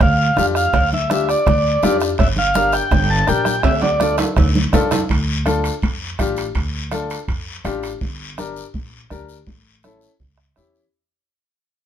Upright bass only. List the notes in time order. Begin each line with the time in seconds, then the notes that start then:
0.00 D2
0.37 F2
0.74 D2
1.47 D2
1.83 F2
2.19 G1
2.91 G1
3.28 A#1
3.63 D2
4.37 D2
4.73 F2
5.10 D2
5.83 F2
6.19 A1
6.55 D2
7.28 F2
7.65 A1
8.01 G1
8.74 A#1
9.11 D2
9.47 A1
10.20 C#2
10.57 E2